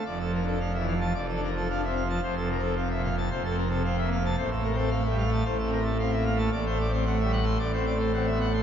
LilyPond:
<<
  \new Staff \with { instrumentName = "Pipe organ" } { \time 4/4 \key f \major \tempo 4 = 112 d''16 a'16 bes'16 a'16 f''16 e''16 f''16 a''16 d''16 a'16 bes'16 a'16 f''16 e''16 f''16 a''16 | c''16 a'16 bes'16 a'16 f''16 e''16 f''16 a''16 c''16 a'16 bes'16 a'16 f''16 e''16 f''16 a''16 | c''16 a'16 bes'16 a'16 f''16 e''16 f''16 a''16 c''16 a'16 bes'16 a'16 f''16 e''16 f''16 a''16 | \key d \mixolydian d''16 c''16 d''16 c''16 fis''16 e''16 fis''16 c'''16 d''16 c''16 d''16 c''16 fis''16 e''16 fis''16 c'''16 | }
  \new Staff \with { instrumentName = "Pipe organ" } { \clef bass \time 4/4 \key f \major << { \tuplet 3/2 { f,8 f8 d'8 f8 e8 f8 f,8 d'8 f8 d'8 c'8 f8 } | \tuplet 3/2 { f,8 c8 c'8 c8 bes,8 c8 f,8 c'8 c8 c'8 bes8 c8 } | \tuplet 3/2 { a,8 a8 c'8 a8 g8 a8 a,8 c'8 a8 c'8 bes8 a8 } | \key d \mixolydian \tuplet 3/2 { a,8 a8 c'8 a8 g8 a8 a,8 c'8 a8 c'8 b8 a8 } | } \\ { f,,2 f,,2 | f,,2 f,,2 | a,,2 a,,2 | a,,2 a,,2 | } >> }
>>